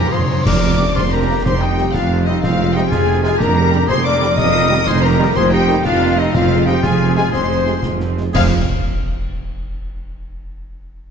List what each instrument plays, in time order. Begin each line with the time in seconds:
Already playing: trombone section C3 G#3, cello section F3, clarinet F4, oboe G4, viola section G#4, french horn section A#4, violin section A#5, flute A#5
0.04 timpani F2
0.10 tuba F1, timpani F2, double bass section F2, oboe G#4, french horn section C5, violin section F5 C6, flute C6
0.19 timpani F2
0.26 tuba F1, timpani F2, double bass section F2, violin section G#5
0.34 timpani F2
0.45 tuba F1, double bass section F1, timpani F2, cello section F2, viola section C4 D4, oboe A#4, french horn section D5, violin section D6, flute D6, concert bass drum, snare, crash
0.63 viola section A#3 D4
0.80 trombone section C3 A#3, viola section C4 D4
0.95 tuba F1, double bass section F1, cello section F2, viola section A#3 D4, oboe F4, french horn section C5, violin section C6, flute C6, concert bass drum, snare
1.11 viola section C4 D4, oboe G4, french horn section A#4, violin section A#5, flute A#5
1.29 trombone section C3 A#3, viola section A#3 D4
1.44 tuba F1, double bass section F1, timpani F2, cello section F2, viola section D#3 C4, oboe G4, french horn section C5, violin section C6, flute C6, concert bass drum, snare
1.60 viola section G3 D#4, oboe D#4, french horn section G4, violin section G5, flute G5
1.78 trombone section C3 G3, viola section D#3 C4, snare
1.93 tuba F1, double bass section F1, cello section F2, viola section G3 D#4, oboe D4, french horn section F4, violin section F5, flute F5, concert bass drum, snare
2.11 viola section D#3 C4
2.26 trombone section C3 G3, viola section G3 D#4, oboe C4, french horn section D#4, violin section D#5, flute D#5
2.42 tuba F1, double bass section F1, cello section F2, timpani F2, viola section F3 C4, oboe C4, french horn section F4, violin section F5, flute F5, concert bass drum, snare
2.61 viola section G#3 F4
2.74 trombone section C3 G#3, viola section F3 C4, oboe D#4, french horn section G4, violin section G5, flute G5, snare
2.91 tuba F1, double bass section F1, cello section F2, viola section G#3 F4, oboe F4, french horn section G#4, violin section G#5, flute G#5, concert bass drum, snare
3.07 viola section F3 C4
3.23 trombone section C3 G#3, viola section G#3 F4, oboe F4, french horn section G#4, flute G#5, violin section G#5, snare
3.38 tuba F1, double bass section F1, cello section F2, viola section A#3 D4, oboe G4, french horn section A#4, violin section A#5, flute A#5, concert bass drum, snare
3.57 viola section G3 A#3
3.71 trombone section D3 G3, viola section A#3 D4, snare
3.88 double bass section F1, tuba F1, cello section F2, viola section G3 A#3, oboe G#4, french horn section C5, violin section C6, flute C6, concert bass drum, snare
4.05 viola section A#3 D4, oboe A#4, french horn section D5, violin section D6, flute D6, snare
4.20 trombone section D3 G3, viola section G3 A#3, snare
4.37 tuba F1, double bass section F1, cello section F2, timpani F2, viola section D#3 A#3, oboe A#4, french horn section D#5, violin section D#6, flute D#6, concert bass drum, snare, crash
4.53 viola section G3 D#4
4.69 trombone section D#3 G3, viola section D#3 A#3
4.86 tuba F1, double bass section F1, cello section F2, viola section G3 D#4, oboe G#4, french horn section C5, violin section C6, flute C6, concert bass drum, snare
5.02 viola section D#3 A#3, oboe G4, french horn section A#4, violin section A#5, flute A#5
5.18 trombone section D#3 G3, viola section G3 D#4
5.35 tuba F1, double bass section F1, cello section F2, viola section D#3 A#3, oboe G#4, french horn section C5, violin section C6, flute C6, concert bass drum, snare
5.51 viola section G3 D#4, oboe D#4, french horn section G4, violin section G5, flute G5
5.69 trombone section D#3 G3, viola section D#3 A#3, snare
5.84 tuba F1, double bass section F1, cello section F2, viola section G3 D#4, oboe D4, french horn section F4, violin section F5, flute F5, concert bass drum, snare
6.02 viola section D#3 A#3
6.17 trombone section D#3 G3, viola section G3 D#4, oboe C4, french horn section D#4, violin section D#5, flute D#5
6.33 tuba F1, double bass section F1, cello section F2, timpani F2, viola section F3 C4, oboe C4, french horn section F4, violin section F5, flute F5, concert bass drum, snare
6.51 viola section G#3 F4
6.66 trombone section C3 G#3, viola section F3 C4, oboe D#4, french horn section G4, violin section G5, flute G5, snare
6.83 tuba F1, double bass section F1, cello section F2, viola section G#3 F4, oboe F4, french horn section G#4, violin section G#5, flute G#5, concert bass drum, snare
7.01 viola section F3 C4
7.16 trombone section C3 G#3, viola section G#3 F4, oboe F4, french horn section G#4, violin section G#5, flute G#5, snare
7.31 double bass section F1, tuba F1, cello section F2, viola section F3 C4, oboe G#4, french horn section C5, violin section C6, flute C6, concert bass drum, snare
7.51 viola section G#3 F4
7.66 trombone section C3 G#3, viola section F3 C4, snare
7.83 double bass section F1, tuba F1, cello section F2, viola section G#3 F4, concert bass drum, snare
8.00 viola section F3 C4, snare
8.18 trombone section C3 G#3, viola section G#3 F4, snare
8.33 tuba F1, double bass section F1, cello section F2, timpani F2, trombone section C3 G#3, viola section G#3 F4, oboe G#4, flute C5, violin section F5, french horn section F5, concert bass drum, snare, crash